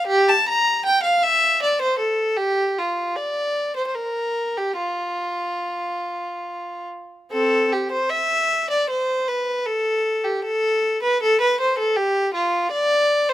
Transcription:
0.07 G4
0.28 A5
0.49 A#5
0.86 G5
1.03 F5
1.23 E5
1.62 D5
1.81 C5
1.99 A4
2.37 G4
2.78 F4
3.16 D5
3.76 C5
3.87 C5
3.94 A#4
4.57 G4
4.78 F4
7.32 C4 A4
7.72 G4
7.92 C5
8.10 E5
8.70 D5
8.89 C5
9.28 B4
9.66 A4
10.24 G4
10.44 A4
11.03 B4
11.23 A4
11.41 B4
11.60 C5
11.78 A4
11.96 G4
12.34 F4
12.71 D5
13.29 C5

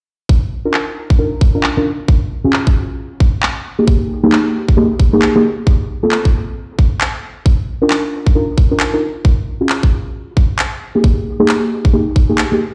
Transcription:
0.29 kick
0.65 D4 D#4 F4 A#4
0.74 clap
1.10 kick
1.19 D4 D#4 F4 A#4
1.41 kick
1.55 D4 D#4 F4 A#4
1.64 clap
1.77 D4 D#4 F4 A#4
2.08 kick
2.44 C#4 F4 F#4 G#4
2.53 clap
2.67 kick
3.20 kick
3.43 clap
3.79 A#3 D#4 G4 G#4
3.88 kick
4.24 A#3 D#4 G4 G#4
4.32 clap
4.68 kick
4.77 A#3 D#4 G4 G#4
5.00 kick
5.13 A#3 D#4 G4 G#4
5.22 clap
5.36 A#3 D#4 G4 G#4
5.67 kick
6.03 A#3 C4 F4 A4
6.12 clap
6.25 kick
6.79 kick
7.01 clap
7.46 kick
7.82 D4 D#4 F4 A#4
7.90 clap
8.27 kick
8.35 D4 D#4 F4 A#4
8.58 kick
8.71 D4 D#4 F4 A#4
8.80 clap
8.94 D4 D#4 F4 A#4
9.25 kick
9.61 C#4 F4 F#4 G#4
9.69 clap
9.83 kick
10.37 kick
10.59 clap
10.95 A#3 D#4 G4 G#4
11.04 kick
11.40 A#3 D#4 G4 G#4
11.49 clap
11.85 kick
11.93 A#3 D#4 G4 G#4
12.16 kick
12.30 A#3 D#4 G4 G#4
12.38 clap
12.52 A#3 D#4 G4 G#4

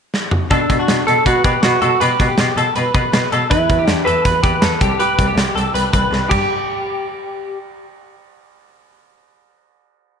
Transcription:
0.14 snare
0.31 mid tom
0.51 B2 D4 A4, kick, closed hi-hat
0.70 B2, kick, closed hi-hat
0.80 F#4
0.88 B2, snare, closed hi-hat
1.07 B2 A4, closed hi-hat
1.26 B2 F#4 B4, kick, closed hi-hat
1.44 B2 G4 B4, kick, closed hi-hat
1.63 B2 F#4, snare, closed hi-hat
1.82 B2 F#4 A4, closed hi-hat
2.00 B2 G4 B4, closed hi-hat
2.20 B2, kick, closed hi-hat
2.29 G4
2.38 B2, snare, closed hi-hat
2.56 B2 A4, closed hi-hat
2.76 B2 B4, closed hi-hat
2.94 B2 B4, kick, closed hi-hat
3.13 B2, snare, closed hi-hat
3.32 B2 A4, closed hi-hat
3.50 E2 E4 B4, kick, closed hi-hat
3.70 E2, kick, closed hi-hat
3.79 G4
3.87 E2 D4, snare, closed hi-hat
4.05 E2 A4 B4, closed hi-hat
4.25 E2 B4, kick, closed hi-hat
4.43 E2 G4 B4, kick, closed hi-hat
4.62 E2 A4, snare, closed hi-hat
4.81 C2 G4, kick, closed hi-hat
4.99 G4 B4, closed hi-hat
5.19 C2, kick, closed hi-hat
5.27 G4
5.36 C2, snare, closed hi-hat
5.55 C2 A4, closed hi-hat
5.74 C2 B4, closed hi-hat
5.93 C2 B4, kick, closed hi-hat
6.11 C2, snare
6.29 G2 G4, kick, crash

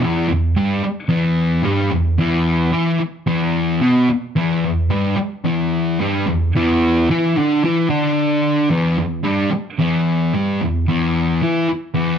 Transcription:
0.04 E2 E3
0.29 E2
0.56 G2 G3
0.85 muted distorted electric guitar stroke
1.09 E2 E3
1.63 G2 G3
1.92 E2
2.18 E2 E3
2.72 E3 E4
2.99 muted distorted electric guitar stroke
3.27 E2 E3
3.81 B2 B3
4.09 muted distorted electric guitar stroke
4.36 E2 E3
4.65 E2
4.90 G2 G3
5.17 muted distorted electric guitar stroke
5.44 E2 E3
5.99 G2 G3
6.27 E2
6.55 E2 E3
7.10 E3 E4
7.38 D3 D4
7.64 E3 E4
7.90 D3 D4
8.70 E2 E3
8.99 E2
9.24 G2 G3
9.52 muted distorted electric guitar stroke
9.79 E2 E3
10.34 G2 G3
10.62 E2
10.88 E2 E3
11.42 E3 E4
11.68 muted distorted electric guitar stroke
11.94 E2 E3

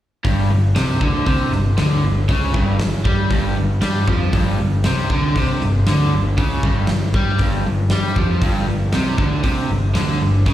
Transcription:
0.25 G1 G2, kick, open hi-hat
0.51 G1 G2
0.76 C2 C3, snare, open hi-hat
1.01 D2 D3, kick
1.26 C2 C3, kick, open hi-hat
1.51 G1 G2, snare
1.78 D2 D3, snare, open hi-hat
2.04 G1 G2
2.29 C#2 C#3, kick, open hi-hat
2.54 G1 G2, kick
2.79 G1 G2, snare, open hi-hat
3.05 G2 G3, kick
3.30 G1 G2, kick, open hi-hat
3.56 G1 G2
3.82 G2 G3, snare, open hi-hat
4.07 F2 F3, kick
4.33 G1 G2, kick, open hi-hat
4.59 G1 G2
4.84 C2 C3, snare, open hi-hat
5.10 D2 D3, kick
5.36 C2 C3, kick, open hi-hat
5.61 G1 G2, snare
5.87 D2 D3, snare, open hi-hat
6.14 G1 G2
6.38 C#2 C#3, kick, open hi-hat
6.63 G1 G2, kick
6.87 G1, snare, open hi-hat
6.91 G2
7.14 G2 G3, kick
7.38 G1 G2, kick, open hi-hat
7.67 G1 G2
7.90 G2 G3, snare, open hi-hat
8.16 F2 F3, kick
8.41 G1 G2, kick, open hi-hat
8.68 G1 G2
8.93 C2 C3, snare, open hi-hat
9.18 D2 D3, kick
9.43 C2 C3, kick, open hi-hat
9.70 G1 G2
9.95 D2 D3, snare, open hi-hat
10.21 G1 G2
10.46 C#2 C#3, kick, open hi-hat

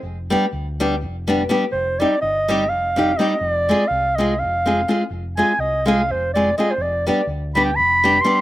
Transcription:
0.03 F1
0.30 G3 B3 D4 G4
0.53 D2
0.80 G3 B3 D4 G4
1.02 F1
1.27 G3 B3 D4 G4
1.49 G3 B3 D4 G4
1.72 F1 C5
1.99 G3 C4 D#4 G4 D5
2.22 G1 D#5
2.48 G3 C4 D#4 G4
2.69 F1 F5
2.96 G3 C4 D#4 G4
3.17 G3 C4 D#4 D#5
3.21 G4
3.38 F1 D#5
3.49 D5
3.69 G#3 C4 F4 G#4
3.88 C2 F5
4.16 G#3 C4 F4 D#5
4.21 G#4
4.39 F1 F5
4.66 G#3 C4 F4 G#4
4.88 G#3 C4 F4 G#4
5.10 F1
5.37 G#3 C4 F4 G#4 G#5
5.59 C2 D#5
5.86 G#3 C4 F4 G#4 F5
6.09 F1 C5
6.34 G#3 C4 F4 G#4 D5
6.58 G#3 C4 F4 G#4 D#5
6.71 C5
6.78 F1
6.82 D5
7.07 G3 B3 D4 G4 D5
7.27 D2
7.55 G3 B3 D4 G4 B5
7.65 G5
7.76 F1 B5
8.04 G3 B3 D4 G4
8.21 G3 B3 D4 C6
8.26 G4

